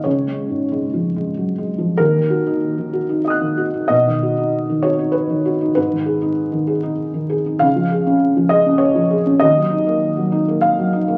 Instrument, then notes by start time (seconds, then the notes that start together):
felt piano
0.04 C#2 C#5
0.27 G#3
0.50 G#2
0.72 G#3
0.94 F3
1.16 G#3
1.37 F#3
1.58 G#3
1.78 F3
1.97 D#2 A#4
2.16 D#3
2.30 F#4
2.46 D#4
2.78 D#3
2.93 F#4
3.09 D#4
3.24 D#5 D#6
3.30 F#6
3.41 D#3
3.57 F#4
3.74 D#4
3.88 B2 D#5
4.07 D#3
4.23 F#4
4.37 D#4
4.69 D#3
4.82 F#4 C#5
4.99 D#4
5.12 B4
5.30 D#3
5.45 F#4
5.61 D#4
5.75 G#2 B4
5.92 D#3
6.06 G#4
6.22 D#4
6.52 D#3
6.67 G#4
6.83 D#4
7.14 D#3
7.29 G#4
7.46 D#4
7.59 C#2 F5
7.76 F3
7.92 G#4
8.06 C#4
8.37 F3
8.49 G#4 D#5
8.66 C#4
8.78 C#5
8.95 F3
9.11 G#4
9.26 C#4
9.39 D#2 D#5
9.57 F#3
9.71 D#4
9.87 A#3
10.17 F#3
10.32 D#4
10.48 A#3
10.61 F5
10.79 F#3
10.93 D#4
11.08 A#3